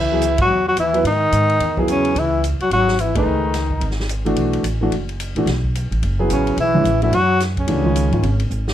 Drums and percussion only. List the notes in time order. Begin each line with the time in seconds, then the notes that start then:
0.22 hi-hat pedal, ride
0.38 kick, ride
0.77 hi-hat pedal, ride
0.94 ride
1.05 ride
1.32 hi-hat pedal, ride
1.49 ride
1.60 ride
1.77 kick
1.88 hi-hat pedal, ride
2.05 ride
2.16 ride
2.44 hi-hat pedal, ride
2.60 ride
2.71 ride
2.88 snare
2.99 hi-hat pedal, ride
3.15 kick, ride
3.54 snare, hi-hat pedal, ride
3.70 kick
3.81 ride
3.91 snare
4.00 snare
4.09 hi-hat pedal, ride
4.26 ride
4.36 ride
4.53 ride
4.64 hi-hat pedal, ride
4.92 ride
5.09 ride
5.20 hi-hat pedal, ride
5.36 ride
5.47 snare, ride
5.64 kick
5.75 hi-hat pedal, ride
5.92 ride
6.03 ride
6.30 hi-hat pedal, ride
6.47 ride
6.58 ride
6.85 hi-hat pedal, ride
7.02 ride
7.13 ride
7.40 snare, hi-hat pedal, ride
7.57 kick, ride
7.68 ride
7.96 hi-hat pedal, ride
8.13 ride
8.23 ride
8.40 ride
8.51 hi-hat pedal
8.68 snare